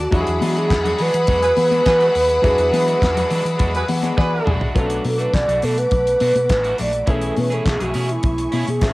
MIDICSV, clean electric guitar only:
0, 0, Header, 1, 3, 480
1, 0, Start_track
1, 0, Tempo, 579151
1, 104, Time_signature, 4, 2, 24, 8
1, 7401, End_track
2, 0, Start_track
2, 0, Title_t, "Clean electric guitar"
2, 0, Program_c, 0, 27
2, 93, Note_on_c, 0, 56, 76
2, 103, Note_on_c, 0, 62, 90
2, 107, Note_on_c, 0, 66, 99
2, 233, Note_off_c, 0, 56, 0
2, 238, Note_off_c, 0, 62, 0
2, 240, Note_off_c, 0, 66, 0
2, 339, Note_on_c, 0, 56, 69
2, 346, Note_on_c, 0, 62, 68
2, 353, Note_on_c, 0, 68, 73
2, 447, Note_off_c, 0, 56, 0
2, 450, Note_off_c, 0, 62, 0
2, 454, Note_off_c, 0, 68, 0
2, 460, Note_on_c, 0, 66, 69
2, 468, Note_on_c, 0, 62, 67
2, 475, Note_on_c, 0, 56, 56
2, 567, Note_off_c, 0, 56, 0
2, 568, Note_off_c, 0, 66, 0
2, 571, Note_off_c, 0, 62, 0
2, 700, Note_on_c, 0, 66, 68
2, 708, Note_on_c, 0, 62, 65
2, 712, Note_on_c, 0, 56, 54
2, 807, Note_off_c, 0, 56, 0
2, 807, Note_off_c, 0, 66, 0
2, 811, Note_off_c, 0, 62, 0
2, 817, Note_on_c, 0, 56, 86
2, 828, Note_on_c, 0, 62, 94
2, 835, Note_on_c, 0, 66, 88
2, 936, Note_off_c, 0, 66, 0
2, 949, Note_off_c, 0, 62, 0
2, 956, Note_off_c, 0, 56, 0
2, 1057, Note_on_c, 0, 56, 91
2, 1066, Note_on_c, 0, 62, 92
2, 1074, Note_on_c, 0, 66, 80
2, 1164, Note_off_c, 0, 66, 0
2, 1176, Note_off_c, 0, 62, 0
2, 1195, Note_off_c, 0, 56, 0
2, 1416, Note_on_c, 0, 66, 70
2, 1425, Note_on_c, 0, 62, 55
2, 1430, Note_on_c, 0, 56, 52
2, 1523, Note_off_c, 0, 56, 0
2, 1525, Note_off_c, 0, 66, 0
2, 1530, Note_off_c, 0, 62, 0
2, 1652, Note_on_c, 0, 66, 94
2, 1661, Note_on_c, 0, 62, 77
2, 1668, Note_on_c, 0, 56, 79
2, 1766, Note_off_c, 0, 56, 0
2, 1770, Note_off_c, 0, 62, 0
2, 1773, Note_off_c, 0, 66, 0
2, 2012, Note_on_c, 0, 56, 79
2, 2022, Note_on_c, 0, 62, 88
2, 2030, Note_on_c, 0, 66, 88
2, 2153, Note_off_c, 0, 56, 0
2, 2158, Note_off_c, 0, 62, 0
2, 2162, Note_off_c, 0, 66, 0
2, 2249, Note_on_c, 0, 56, 66
2, 2256, Note_on_c, 0, 62, 62
2, 2266, Note_on_c, 0, 68, 76
2, 2361, Note_off_c, 0, 56, 0
2, 2365, Note_off_c, 0, 62, 0
2, 2368, Note_off_c, 0, 68, 0
2, 2371, Note_on_c, 0, 66, 64
2, 2375, Note_on_c, 0, 62, 54
2, 2386, Note_on_c, 0, 56, 50
2, 2478, Note_off_c, 0, 56, 0
2, 2481, Note_off_c, 0, 62, 0
2, 2483, Note_off_c, 0, 66, 0
2, 2607, Note_on_c, 0, 66, 63
2, 2618, Note_on_c, 0, 62, 60
2, 2622, Note_on_c, 0, 56, 51
2, 2714, Note_off_c, 0, 56, 0
2, 2721, Note_off_c, 0, 66, 0
2, 2722, Note_off_c, 0, 62, 0
2, 2724, Note_on_c, 0, 56, 76
2, 2732, Note_on_c, 0, 62, 96
2, 2737, Note_on_c, 0, 66, 90
2, 2840, Note_off_c, 0, 66, 0
2, 2851, Note_off_c, 0, 62, 0
2, 2868, Note_off_c, 0, 56, 0
2, 2965, Note_on_c, 0, 56, 86
2, 2971, Note_on_c, 0, 62, 91
2, 2978, Note_on_c, 0, 66, 91
2, 3079, Note_off_c, 0, 66, 0
2, 3089, Note_off_c, 0, 62, 0
2, 3109, Note_off_c, 0, 56, 0
2, 3330, Note_on_c, 0, 66, 62
2, 3340, Note_on_c, 0, 62, 65
2, 3345, Note_on_c, 0, 56, 58
2, 3441, Note_off_c, 0, 56, 0
2, 3442, Note_off_c, 0, 66, 0
2, 3443, Note_off_c, 0, 62, 0
2, 3686, Note_on_c, 0, 56, 88
2, 3693, Note_on_c, 0, 62, 100
2, 3702, Note_on_c, 0, 66, 98
2, 3798, Note_off_c, 0, 66, 0
2, 3804, Note_off_c, 0, 62, 0
2, 3808, Note_on_c, 0, 66, 65
2, 3813, Note_off_c, 0, 56, 0
2, 3814, Note_on_c, 0, 62, 60
2, 3823, Note_on_c, 0, 56, 53
2, 3921, Note_off_c, 0, 66, 0
2, 3924, Note_off_c, 0, 62, 0
2, 3926, Note_off_c, 0, 56, 0
2, 3930, Note_on_c, 0, 56, 85
2, 3934, Note_on_c, 0, 61, 76
2, 3944, Note_on_c, 0, 65, 86
2, 4021, Note_off_c, 0, 56, 0
2, 4021, Note_on_c, 0, 57, 85
2, 4026, Note_off_c, 0, 61, 0
2, 4026, Note_on_c, 0, 62, 76
2, 4035, Note_off_c, 0, 65, 0
2, 4035, Note_on_c, 0, 66, 86
2, 4157, Note_off_c, 0, 57, 0
2, 4159, Note_off_c, 0, 62, 0
2, 4164, Note_off_c, 0, 66, 0
2, 4296, Note_on_c, 0, 66, 62
2, 4306, Note_on_c, 0, 62, 57
2, 4312, Note_on_c, 0, 57, 48
2, 4405, Note_off_c, 0, 66, 0
2, 4411, Note_off_c, 0, 62, 0
2, 4413, Note_off_c, 0, 57, 0
2, 4542, Note_on_c, 0, 66, 62
2, 4552, Note_on_c, 0, 62, 45
2, 4558, Note_on_c, 0, 57, 47
2, 4648, Note_off_c, 0, 66, 0
2, 4651, Note_off_c, 0, 57, 0
2, 4653, Note_off_c, 0, 62, 0
2, 4661, Note_on_c, 0, 57, 66
2, 4669, Note_on_c, 0, 62, 88
2, 4675, Note_on_c, 0, 66, 77
2, 4778, Note_off_c, 0, 66, 0
2, 4790, Note_off_c, 0, 62, 0
2, 4798, Note_off_c, 0, 57, 0
2, 5139, Note_on_c, 0, 57, 74
2, 5150, Note_on_c, 0, 62, 78
2, 5154, Note_on_c, 0, 66, 81
2, 5249, Note_off_c, 0, 66, 0
2, 5261, Note_off_c, 0, 62, 0
2, 5277, Note_off_c, 0, 57, 0
2, 5497, Note_on_c, 0, 66, 89
2, 5508, Note_on_c, 0, 62, 74
2, 5515, Note_on_c, 0, 57, 66
2, 5609, Note_off_c, 0, 57, 0
2, 5616, Note_off_c, 0, 62, 0
2, 5619, Note_on_c, 0, 57, 67
2, 5626, Note_off_c, 0, 66, 0
2, 5626, Note_on_c, 0, 62, 77
2, 5636, Note_on_c, 0, 66, 68
2, 5727, Note_off_c, 0, 66, 0
2, 5728, Note_off_c, 0, 57, 0
2, 5731, Note_off_c, 0, 62, 0
2, 5853, Note_on_c, 0, 61, 70
2, 5858, Note_on_c, 0, 64, 81
2, 5865, Note_on_c, 0, 68, 76
2, 6079, Note_off_c, 0, 61, 0
2, 6082, Note_off_c, 0, 64, 0
2, 6086, Note_off_c, 0, 68, 0
2, 6217, Note_on_c, 0, 68, 67
2, 6223, Note_on_c, 0, 64, 55
2, 6231, Note_on_c, 0, 61, 49
2, 6327, Note_off_c, 0, 68, 0
2, 6330, Note_off_c, 0, 64, 0
2, 6331, Note_off_c, 0, 61, 0
2, 6466, Note_on_c, 0, 68, 61
2, 6473, Note_on_c, 0, 64, 53
2, 6480, Note_on_c, 0, 61, 45
2, 6566, Note_off_c, 0, 61, 0
2, 6571, Note_off_c, 0, 68, 0
2, 6575, Note_off_c, 0, 64, 0
2, 6576, Note_on_c, 0, 61, 75
2, 6584, Note_on_c, 0, 64, 82
2, 6591, Note_on_c, 0, 68, 89
2, 6690, Note_off_c, 0, 68, 0
2, 6704, Note_off_c, 0, 64, 0
2, 6716, Note_off_c, 0, 61, 0
2, 7059, Note_on_c, 0, 61, 74
2, 7067, Note_on_c, 0, 64, 89
2, 7077, Note_on_c, 0, 68, 85
2, 7174, Note_off_c, 0, 68, 0
2, 7183, Note_off_c, 0, 64, 0
2, 7197, Note_off_c, 0, 61, 0
2, 7401, End_track
3, 0, Start_track
3, 0, Title_t, "Muted clean electric guitar strokes"
3, 577, Note_on_c, 9, 29, 45
3, 660, Note_off_c, 9, 29, 0
3, 946, Note_on_c, 9, 29, 56
3, 1029, Note_off_c, 9, 29, 0
3, 1174, Note_on_c, 9, 29, 62
3, 1257, Note_off_c, 9, 29, 0
3, 1292, Note_on_c, 9, 29, 46
3, 1375, Note_off_c, 9, 29, 0
3, 1533, Note_on_c, 9, 29, 44
3, 1616, Note_off_c, 9, 29, 0
3, 1776, Note_on_c, 9, 29, 43
3, 1859, Note_off_c, 9, 29, 0
3, 1894, Note_on_c, 9, 29, 48
3, 1977, Note_off_c, 9, 29, 0
3, 2849, Note_on_c, 9, 29, 52
3, 2932, Note_off_c, 9, 29, 0
3, 3089, Note_on_c, 9, 29, 54
3, 3172, Note_off_c, 9, 29, 0
3, 3213, Note_on_c, 9, 29, 47
3, 3296, Note_off_c, 9, 29, 0
3, 3451, Note_on_c, 9, 29, 42
3, 3534, Note_off_c, 9, 29, 0
3, 3570, Note_on_c, 9, 29, 39
3, 3653, Note_off_c, 9, 29, 0
3, 4178, Note_on_c, 9, 29, 46
3, 4261, Note_off_c, 9, 29, 0
3, 4788, Note_on_c, 9, 29, 37
3, 4871, Note_off_c, 9, 29, 0
3, 5027, Note_on_c, 9, 29, 40
3, 5110, Note_off_c, 9, 29, 0
3, 5259, Note_on_c, 9, 29, 42
3, 5342, Note_off_c, 9, 29, 0
3, 5382, Note_on_c, 9, 29, 38
3, 5465, Note_off_c, 9, 29, 0
3, 5737, Note_on_c, 9, 29, 38
3, 5820, Note_off_c, 9, 29, 0
3, 6096, Note_on_c, 9, 29, 48
3, 6179, Note_off_c, 9, 29, 0
3, 6341, Note_on_c, 9, 29, 41
3, 6423, Note_off_c, 9, 29, 0
3, 6700, Note_on_c, 9, 29, 46
3, 6783, Note_off_c, 9, 29, 0
3, 6949, Note_on_c, 9, 29, 42
3, 7032, Note_off_c, 9, 29, 0
3, 7184, Note_on_c, 9, 29, 44
3, 7267, Note_off_c, 9, 29, 0
3, 7307, Note_on_c, 9, 29, 37
3, 7390, Note_off_c, 9, 29, 0
3, 7401, End_track
0, 0, End_of_file